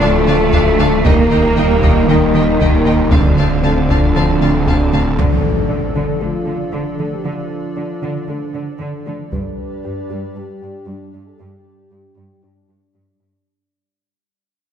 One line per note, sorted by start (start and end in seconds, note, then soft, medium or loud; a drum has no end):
0.00 1.07 D1 medium
0.00 0.47 D2 medium
0.00 0.17 D3 medium
0.00 1.01 F3 medium
0.00 1.02 A3 medium
0.00 1.05 A3 medium
0.00 0.17 A3 medium
0.00 0.10 D4 medium
0.00 1.05 F4 medium
0.00 1.05 A4 medium
0.00 1.01 D5 medium
0.00 0.09 F5 medium
0.00 0.10 A5 medium
0.28 0.43 D3 medium
0.28 0.43 A3 medium
0.28 0.36 D4 medium
0.28 0.36 F5 soft
0.28 0.36 A5 medium
0.53 0.99 D2 medium
0.53 0.69 D2 medium
0.53 0.69 D3 medium
0.53 0.62 D4 medium
0.53 0.61 F5 soft
0.53 0.62 A5 medium
0.53 taiko medium
0.79 0.95 D3 medium
0.79 0.95 A3 medium
0.79 0.88 D4 soft
0.79 0.87 F5 soft
0.79 0.87 A5 soft
1.03 3.13 D#1 medium
1.03 1.21 D#2 medium
1.03 1.51 D#2 medium
1.03 1.21 D#3 medium
1.03 3.11 G3 medium
1.03 2.95 G3 medium
1.03 2.08 A#3 medium
1.03 2.95 A#3 medium
1.03 3.11 D#4 medium
1.03 1.14 D#4 medium
1.03 3.11 A#4 medium
1.03 2.06 A#4 medium
1.03 3.11 D#5 medium
1.03 1.13 D#5 medium
1.03 1.13 G5 medium
1.03 taiko medium
1.30 1.46 D#3 medium
1.30 1.40 D#4 medium
1.30 1.38 D#5 soft
1.30 1.39 G5 soft
1.56 2.02 D#2 medium
1.56 1.73 D#3 medium
1.56 1.72 A#3 medium
1.56 1.66 D#4 medium
1.56 1.65 D#5 soft
1.56 1.65 G5 soft
1.82 1.98 D#2 medium
1.82 1.98 D#3 medium
1.82 1.92 D#4 soft
1.82 1.90 D#5 soft
1.82 1.91 G5 soft
1.82 taiko medium
2.08 2.54 D#2 medium
2.08 3.12 D#3 medium
2.08 2.24 D#3 medium
2.08 2.24 A#3 medium
2.08 3.12 D#4 medium
2.08 2.17 D#4 soft
2.08 2.17 D#5 soft
2.08 2.17 G5 soft
2.34 2.50 D#3 medium
2.34 2.50 A#3 medium
2.34 2.43 D#4 soft
2.34 2.42 D#5 soft
2.34 2.43 G5 soft
2.60 3.05 D#2 medium
2.60 2.76 D#2 medium
2.60 2.76 D#3 medium
2.60 2.69 D#4 soft
2.60 2.68 D#5 soft
2.60 2.69 G5 soft
2.60 taiko medium
2.86 3.02 D#3 medium
2.86 3.01 A#3 medium
2.86 2.94 D#4 soft
2.86 2.94 D#5 soft
2.86 2.94 G5 soft
3.11 5.19 D1 medium
3.11 3.57 D2 medium
3.11 3.27 D2 medium
3.11 4.89 D3 medium
3.11 3.27 D3 medium
3.11 5.18 F3 medium
3.11 4.89 F3 medium
3.11 5.19 C4 medium
3.11 4.89 C4 soft
3.11 3.20 C4 soft
3.11 4.89 D4 medium
3.11 5.17 A4 medium
3.11 5.18 D5 medium
3.11 3.19 F5 soft
3.11 3.21 A5 soft
3.11 taiko medium
3.38 3.53 D3 medium
3.38 3.46 C4 soft
3.38 3.46 F5 soft
3.38 3.46 A5 soft
3.63 4.09 D2 soft
3.63 3.79 D3 soft
3.63 3.79 A3 soft
3.63 3.72 C4 soft
3.63 3.72 F5 soft
3.63 3.71 A5 soft
3.89 4.05 D2 medium
3.89 4.05 D3 medium
3.89 3.98 C4 soft
3.89 3.98 F5 soft
3.89 3.98 A5 soft
3.89 taiko medium
4.15 4.61 D2 soft
4.15 4.31 D3 medium
4.15 4.30 A3 medium
4.15 4.23 C4 soft
4.15 4.24 F5 soft
4.15 4.24 A5 soft
4.40 4.57 D3 medium
4.40 4.56 A3 medium
4.40 4.49 C4 soft
4.40 4.50 F5 soft
4.40 4.50 A5 soft
4.66 5.13 D2 soft
4.66 4.83 D2 medium
4.66 4.82 D3 medium
4.66 4.74 C4 soft
4.66 4.75 F5 soft
4.66 4.76 A5 soft
4.66 taiko medium
4.92 5.09 D3 medium
4.92 5.08 A3 medium
4.92 5.00 C4 soft
4.92 5.01 F5 soft
4.92 5.02 A5 soft
5.18 5.34 D3 medium
5.18 5.26 D3 medium
5.18 9.29 F3 medium
5.18 9.28 D4 medium
5.18 6.18 A4 medium
5.18 9.28 A4 medium
5.18 9.29 D5 medium
5.18 taiko medium
5.18 impact soft
5.70 5.78 D3 soft
5.70 5.86 D4 medium
5.96 6.11 D3 medium
5.96 6.04 D3 medium
6.21 6.30 D3 soft
6.21 6.37 A3 medium
6.21 6.73 F4 medium
6.47 6.55 D3 soft
6.47 6.63 D4 medium
6.73 6.81 D3 medium
6.73 6.89 D3 medium
6.73 7.12 D4 medium
6.99 7.07 D3 soft
6.99 7.15 A3 medium
7.13 7.26 G4 medium
7.25 7.33 D3 soft
7.25 7.41 D3 medium
7.25 8.29 F4 medium
7.77 7.85 D3 soft
7.77 7.92 D4 soft
8.03 8.18 D3 medium
8.03 8.11 D3 medium
8.29 8.37 D3 soft
8.29 8.45 A3 medium
8.29 9.33 D4 medium
8.54 8.62 D3 soft
8.54 8.71 D4 medium
8.81 8.96 D3 medium
8.81 8.89 D3 medium
9.07 9.15 D3 soft
9.07 9.22 A3 medium
9.32 9.40 G2 medium
9.32 9.48 G3 medium
9.32 13.46 G3 medium
9.32 13.43 D4 medium
9.32 13.46 G4 medium
9.32 10.34 B4 medium
9.32 13.42 D5 medium
9.32 taiko medium
9.84 9.92 G2 soft
9.84 10.00 G4 medium
10.10 10.18 G2 medium
10.10 10.26 G3 medium
10.36 10.45 G2 soft
10.36 10.52 D4 medium
10.36 10.87 G4 medium
10.62 10.70 G2 soft
10.62 10.78 G4 medium
10.88 10.96 G2 medium
10.88 11.04 G3 medium
10.88 11.27 D4 medium
11.14 11.22 G2 soft
11.14 11.29 D4 soft
11.28 11.40 A4 medium
11.39 11.47 G2 medium
11.39 11.55 G3 medium
11.39 12.43 G4 medium
11.92 12.00 G2 soft
11.92 12.07 G4 medium
12.17 12.25 G2 medium
12.17 12.33 G3 medium
12.43 12.51 G2 soft
12.43 13.46 D4 medium
12.43 12.59 D4 medium
12.69 12.77 G2 soft
12.69 12.85 G4 soft
12.95 13.03 G2 medium
12.95 13.10 G3 medium
13.20 13.29 G2 soft
13.20 13.36 D4 medium